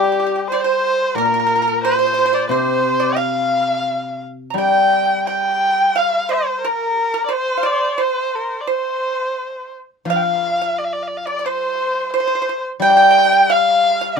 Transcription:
Already playing: guzheng G3, erhu G4
0.04 pipa G4
0.12 pipa G4
0.20 pipa G4
0.27 pipa G4
0.36 pipa G4
0.48 erhu C5
0.52 pipa C5, erhu D5
0.61 erhu C5, pipa C5
1.14 guzheng A#2, erhu A#4, pipa A#4
1.25 pipa A#4
1.34 pipa A#4
1.40 pipa A#4
1.46 pipa A#4
1.56 pipa A#4
1.62 pipa A#4
1.68 pipa A#4
1.83 erhu C5, pipa C5
1.91 pipa C5
1.99 pipa C5
2.06 pipa C5
2.14 pipa C5
2.19 pipa C5
2.26 pipa C5
2.33 pipa C5, erhu D5
2.49 guzheng C3, erhu C5, pipa C5
3.00 pipa D5
3.12 erhu G5
3.16 pipa F5, erhu F5
4.50 guzheng G3, pipa A#5
4.58 erhu G5, pipa G5
5.27 pipa G5, erhu G5
5.96 pipa F5, erhu F5
6.29 pipa C5, erhu C5
6.33 erhu C5
6.62 erhu A#4, pipa A#4
6.66 erhu A#4
6.96 pipa G4
7.14 pipa A#4
7.26 pipa C5, erhu D5
7.30 erhu C5
7.57 pipa F5
7.63 pipa D5, erhu D5
7.98 pipa C5, erhu C5
8.35 erhu A#4
8.61 erhu D5
8.67 pipa C5, erhu C5
10.05 guzheng F3, erhu F5
10.10 erhu F5, pipa F5
10.16 erhu G5
10.22 erhu F5
10.61 pipa F5
10.78 erhu D5
10.84 erhu F5
10.92 erhu D5
11.03 erhu F5
11.07 erhu D5
11.17 erhu F5
11.26 erhu D5, pipa D5
11.39 pipa D5
11.46 pipa C5, erhu C5
12.13 erhu C5, pipa C5
12.20 pipa C5
12.27 pipa C5
12.35 pipa C5
12.42 pipa C5
12.49 pipa C5
12.80 guzheng G3, pipa G5, erhu G5
12.90 pipa G5
12.97 pipa G5
13.02 pipa G5
13.11 pipa G5
13.19 pipa G5
13.25 pipa G5
13.32 pipa G5
13.50 pipa F5, erhu F5
14.01 pipa F5
14.12 erhu F5
14.17 guzheng D3

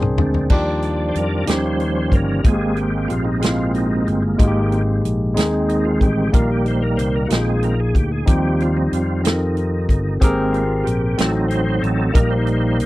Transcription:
Already playing: fingered electric bass C2, tine electric piano A#2 C4 D4 G#4 A#4 C5
0.02 mid tom
0.18 fingered electric bass D2, tonewheel organ G#3 C4 D4, floor tom
0.34 floor tom
0.50 fingered electric bass D#2, tine electric piano D#3 D4 D#4 F4 G4, tonewheel organ F3 G3 D5, kick, crash
0.82 closed hi-hat
1.09 tonewheel organ C5
1.15 fingered electric bass F2, tonewheel organ A#4, closed hi-hat
1.46 fingered electric bass D#2, tine electric piano D#3 A#3 C#4 D#4 G4, tonewheel organ F3 G3 C#4, snare, closed hi-hat
1.51 tonewheel organ C5
1.80 closed hi-hat
2.12 fingered electric bass G1, tonewheel organ A#4, kick, closed hi-hat
2.44 fingered electric bass G#1, tine electric piano G#2 G#3 A#3 C4 F4, tonewheel organ G#3 A#3 C4, kick, closed hi-hat
2.48 tonewheel organ G#4
2.53 tine electric piano G4
2.77 tonewheel organ G4, closed hi-hat
3.08 fingered electric bass A#1, tonewheel organ F4, closed hi-hat
3.25 tonewheel organ D#4
3.40 tine electric piano G#3 A#3 C4 E4, tonewheel organ F4, closed hi-hat
3.45 snare
3.49 tine electric piano F4
3.74 tonewheel organ D#4, closed hi-hat
4.07 fingered electric bass G1, tonewheel organ C4, closed hi-hat
4.23 tonewheel organ A#3
4.38 fingered electric bass G#1, tine electric piano G#2 G#3 A#3 D#4 F#4, tonewheel organ D#3 G#3 A#3 G4, kick, closed hi-hat
4.47 tine electric piano G4
4.72 tonewheel organ C4, closed hi-hat
5.04 fingered electric bass A#1, closed hi-hat
5.34 fingered electric bass D#2, tine electric piano D#3 G#3 C4 D#4 G#4, tonewheel organ D#3 G#3, closed hi-hat
5.39 tonewheel organ C4, snare
5.69 tonewheel organ D#4, closed hi-hat
5.85 tonewheel organ F4
6.01 fingered electric bass A1, tonewheel organ G4, kick, closed hi-hat
6.32 fingered electric bass A#1, tine electric piano A#2 A#3 D#4 G4 A#4, tonewheel organ D#3 G3 A#3 F4, kick, closed hi-hat
6.51 tonewheel organ G4
6.66 tonewheel organ C5, closed hi-hat
6.82 tonewheel organ A#4
6.97 fingered electric bass C2, tonewheel organ C5, closed hi-hat
7.16 tonewheel organ A#4
7.26 tine electric piano A#2 A#3 D#4, tonewheel organ F#4, closed hi-hat
7.30 fingered electric bass A#1, tonewheel organ D#3 G#3 C4 G4, tine electric piano F4 G#4, snare
7.48 tonewheel organ G#4
7.63 tonewheel organ A#4, closed hi-hat
7.80 tonewheel organ G#4
7.95 fingered electric bass D2, tonewheel organ G4, kick, closed hi-hat
8.12 tonewheel organ G#4
8.26 fingered electric bass D#2, tine electric piano D#3 C4 D#4 F4 G4, tonewheel organ F3, kick, closed hi-hat
8.30 tonewheel organ G3 C4 G4
8.60 tonewheel organ F4, closed hi-hat
8.77 tonewheel organ D#4
8.92 fingered electric bass F2, tonewheel organ F4, closed hi-hat
9.24 tine electric piano C4 D#4 F4 A4, tonewheel organ D#4, snare, closed hi-hat
9.33 tine electric piano A#4
9.57 closed hi-hat
9.89 fingered electric bass G1, kick, closed hi-hat
10.20 fingered electric bass G#1, tine electric piano G#2 C4 G4 G#4 A#4, tonewheel organ G#3 A#3 C4, kick, closed hi-hat
10.53 tonewheel organ F4, closed hi-hat
10.84 fingered electric bass A#1, tonewheel organ G4, closed hi-hat
11.18 fingered electric bass A1, tine electric piano A2 C4 D#4 F#4 A4, tonewheel organ F#3 C4 D#4 A4, snare, closed hi-hat
11.48 tonewheel organ C5, closed hi-hat
11.82 fingered electric bass A1, tonewheel organ A4, closed hi-hat
12.12 fingered electric bass A#1, tine electric piano A#2 A#3 D#4 G4 A#4, tonewheel organ G3 A#3 A#4, kick, closed hi-hat
12.17 tonewheel organ D#4
12.30 tonewheel organ C5
12.47 closed hi-hat
12.80 fingered electric bass C2, closed hi-hat

